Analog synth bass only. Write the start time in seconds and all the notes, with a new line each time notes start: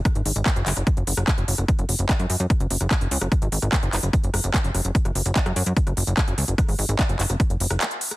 0.15 G#1
0.26 G#1
0.36 G#1
0.56 F#1
0.66 F#1
0.77 F#1
0.97 F#1
1.07 F#1
1.17 F#1
1.38 F#1
1.48 F#1
1.58 F#1
1.79 F#1
1.89 F#1
1.99 F#1
2.19 F#2
2.30 F#2
2.40 F#2
2.60 F#1
2.70 F#1
2.81 F#1
3.01 F#1
3.11 C#2
3.21 F#1
3.42 G#1
3.52 G#1
3.62 G#1
3.83 F#1
3.93 F#1
4.03 F#1
4.24 F#1
4.34 F#1
4.44 F#1
4.64 F#1
4.75 F#1
4.85 F#1
5.05 F#1
5.15 F#1
5.26 F#1
5.46 F#2
5.56 F#2
5.66 F#2
5.87 F#1
5.97 F#1
6.07 F#1
6.28 F#1
6.38 C#2
6.48 F#1
6.68 G#1
6.79 G#1
6.89 G#1
7.09 F#1
7.19 F#1
7.30 F#1
7.50 F#1
7.60 F#1
7.70 F#1